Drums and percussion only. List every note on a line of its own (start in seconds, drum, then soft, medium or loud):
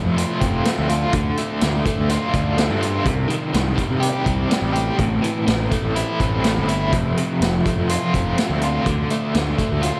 0.18 closed hi-hat medium
0.41 kick medium
0.41 closed hi-hat medium
0.65 snare loud
0.65 closed hi-hat medium
0.89 closed hi-hat medium
1.13 kick loud
1.13 closed hi-hat medium
1.37 closed hi-hat medium
1.61 snare loud
1.61 closed hi-hat medium
1.86 kick medium
1.86 closed hi-hat medium
2.09 closed hi-hat medium
2.34 kick medium
2.34 closed hi-hat medium
2.58 snare loud
2.58 closed hi-hat medium
2.82 closed hi-hat medium
3.06 kick loud
3.06 closed hi-hat medium
3.30 closed hi-hat medium
3.54 snare loud
3.54 closed hi-hat medium
3.78 kick medium
3.78 closed hi-hat medium
4.02 closed hi-hat medium
4.26 kick medium
4.26 closed hi-hat medium
4.51 snare loud
4.51 closed hi-hat medium
4.75 closed hi-hat medium
4.99 kick loud
4.99 closed hi-hat medium
5.24 closed hi-hat medium
5.47 snare loud
5.47 closed hi-hat medium
5.72 kick medium
5.72 closed hi-hat medium
5.96 closed hi-hat medium
6.20 kick medium
6.20 closed hi-hat medium
6.44 snare loud
6.44 closed hi-hat medium
6.69 closed hi-hat medium
6.93 kick loud
6.93 closed hi-hat medium
7.17 closed hi-hat medium
7.42 snare loud
7.42 closed hi-hat medium
7.66 kick medium
7.66 closed hi-hat medium
7.89 closed hi-hat medium
8.14 kick medium
8.14 closed hi-hat medium
8.38 snare loud
8.38 closed hi-hat medium
8.62 closed hi-hat medium
8.86 kick loud
8.86 closed hi-hat medium
9.10 closed hi-hat medium
9.34 snare loud
9.34 closed hi-hat medium
9.59 kick medium
9.59 closed hi-hat medium
9.83 closed hi-hat medium